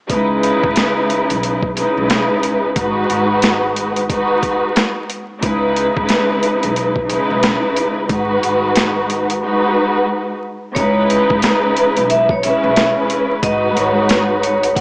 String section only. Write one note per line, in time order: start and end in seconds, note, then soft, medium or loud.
0.08 1.65 C#3 loud
0.08 1.65 G#3 loud
0.08 1.65 D#4 loud
0.08 1.66 E4 loud
0.08 1.66 B4 loud
1.75 2.69 C#3 loud
1.75 2.70 G#3 medium
1.75 2.70 D#4 medium
1.75 2.70 E4 medium
1.75 2.71 B4 loud
2.75 4.00 G#2 loud
2.75 4.01 G#3 medium
2.75 4.01 D#4 medium
2.75 4.01 F#4 medium
2.75 4.02 B4 loud
4.09 5.03 G#2 loud
4.09 5.03 G#3 medium
4.09 5.04 D#4 loud
4.09 5.04 F#4 medium
4.09 5.04 B4 loud
5.41 6.98 C#3 loud
5.41 6.98 G#3 medium
5.41 6.99 D#4 medium
5.41 6.99 E4 loud
5.41 6.99 B4 loud
7.08 8.03 C#3 loud
7.08 8.03 G#3 medium
7.08 8.03 D#4 medium
7.08 8.04 E4 medium
7.08 8.04 B4 loud
8.08 9.34 G#2 loud
8.08 9.34 G#3 medium
8.08 9.34 D#4 medium
8.08 9.35 F#4 loud
8.08 9.35 B4 loud
9.42 10.36 G#2 loud
9.42 10.36 G#3 medium
9.42 10.37 D#4 medium
9.42 10.37 F#4 medium
9.42 10.37 B4 loud
10.74 12.31 C#3 loud
10.74 12.32 G#3 loud
10.74 12.32 D#4 loud
10.74 12.32 E4 loud
10.74 12.32 B4 loud
12.42 13.36 C#3 loud
12.42 13.36 G#3 medium
12.42 13.37 C#4 medium
12.42 13.37 E4 medium
12.42 13.37 B4 loud
13.42 14.67 G#2 loud
13.42 14.67 G#3 medium
13.42 14.68 D#4 medium
13.42 14.68 F#4 loud
13.42 14.68 B4 loud
14.75 14.81 G#2 loud
14.75 14.81 G#3 medium
14.75 14.81 D#4 loud
14.75 14.81 F#4 loud